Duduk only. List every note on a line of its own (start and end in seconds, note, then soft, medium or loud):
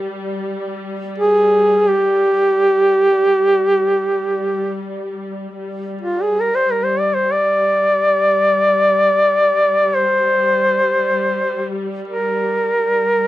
1.18 1.90 G#4 medium
1.88 4.86 G4 loud
6.01 6.24 F4 medium
6.22 6.42 G#4 medium
6.40 6.57 A#4 medium
6.55 6.72 C5 medium
6.71 6.85 A#4 medium
6.84 7.01 C5 medium
6.99 7.16 D5 medium
7.14 7.33 C5 medium
7.31 9.97 D5 medium
9.95 11.75 C5 medium
12.08 13.27 A#4 medium